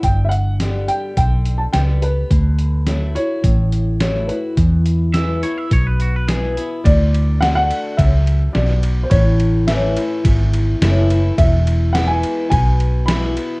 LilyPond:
<<
  \new Staff \with { instrumentName = "Upright piano" } { \time 4/4 \key d \lydian \tempo 4 = 106 g''16. e''32 fis''4 g''8 g''8. a''16 g''8 b'8~ | b'4. cis''4. cis''8 b'8~ | b'2. r4 | d''4 fis''16 fis''8. e''4 d''8.~ d''32 c''32 |
cis''4 e''2~ e''8 r8 | e''4 fis''16 gis''8. gis''4 b''4 | }
  \new Staff \with { instrumentName = "Clean electric guitar" } { \time 4/4 \key d \lydian r1 | r1 | r4 e''8 cis''16 e''16 cis''16 b'16 fis'16 b'16 gis'8. r16 | r1 |
r1 | r1 | }
  \new Staff \with { instrumentName = "Steel-string acoustic guitar" } { \time 4/4 \key d \lydian << { r4 <d g b g'>4 r4 <d g b g'>8 <b g'>8 | r4 <fis a e' fis'>8 <e' fis'>8 r4 <fis a e' fis'>8 <e' fis'>8 | r4 <e gis b e'>8 <b e'>8 r4 <e gis b e'>8 <b e'>8 | r4 <d a d' fis'>4 r2 |
r4 <e a cis' e'>8 <cis' e'>8 r4 <e a cis' e'>8 <cis' e'>8 | r4 <e gis b e'>4 r4 <e gis b e'>8 <b e'>8 | } \\ { g,2 d2 | d2 a,2 | e,2 b,2 | d2 fis,4 b,4 |
a,2 e,2 | e,2 b,2 | } >> }
  \new Staff \with { instrumentName = "Fingered electric bass" } { \clef bass \time 4/4 \key d \lydian g,,2 b,,4 cis,4 | d,2 a,,2 | e,2 b,,2 | d,2 cis,4 b,,4 |
a,,2 gis,,4 fis,,4 | e,,2 b,,2 | }
  \new DrumStaff \with { instrumentName = "Drums" } \drummode { \time 4/4 <hh bd>8 hh8 <hh sn>8 hh8 <hh bd>8 hh8 <hh sn>8 hh8 | <hh bd>8 hh8 <hh sn>8 hh8 <hh bd>8 hh8 <hh sn>8 hh8 | <hh bd>8 hh8 <hh sn>8 hh8 <hh bd>8 hh8 <hh sn>8 hh8 | <bd cymr>8 cymr8 <cymr sn>8 cymr8 <bd cymr>8 cymr8 <cymr sn>8 cymr8 |
<bd cymr>8 cymr8 <cymr sn>8 cymr8 <bd cymr>8 cymr8 <cymr sn>8 cymr8 | <bd cymr>8 cymr8 <cymr sn>8 cymr8 <bd cymr>8 cymr8 <cymr sn>8 cymr8 | }
>>